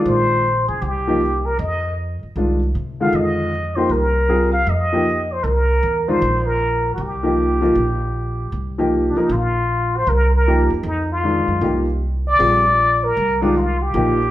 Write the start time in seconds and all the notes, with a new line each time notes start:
Already playing: D#3 G#3 D4 F4
0.05 A#1 C5
0.68 E1 G#4
0.81 C2 G4
1.07 F3 A#3 D#4 G4
1.46 A#4
1.59 F2 D#5
2.23 muted upright bass stroke
2.36 C2 D#3 G#3 D4 F4
2.75 C3
3.01 D3 D#3 G#3 F4 F5
3.13 F2 D#5
3.76 F3 A#3 D#4 G4 C5
3.89 C2 A#4
4.28 G3 C4 F4 G#4
4.52 F5
4.67 F2 D#5
4.93 F3 A#3 D#4 G4
5.32 C5
5.43 C2 A#4
5.83 E2
6.08 D#3 G#3 D4 F4 C5
6.22 A#1
6.46 A#4
6.94 C2 F#4
7.00 G4
7.23 F3 A#3 D#4 G4
7.61 F3 A#3 D#4 F4
7.75 A#1
8.52 C2
8.78 F3 A#3 D#4 G4
9.10 D4
9.16 F3 A#3 D#4 A#4, muted upright bass stroke
9.29 A#1 F4
9.97 C5
10.07 C2 A#4
10.35 A#4
10.47 F3 A#3 D#4 G4
10.70 E2
10.83 F2 D#4
11.12 F4
11.23 D#3 G#3 D4 F4
11.48 F#2
11.61 C2 F3 A#3 D#4 G4
12.27 D5
12.39 A#1 G3 C4 F4 G#4
13.04 A#4
13.17 C2
13.41 D#3 G#3 D4 F4 G4
13.57 F4
13.82 G4
13.94 A#1 F3 A#3 D#4 G4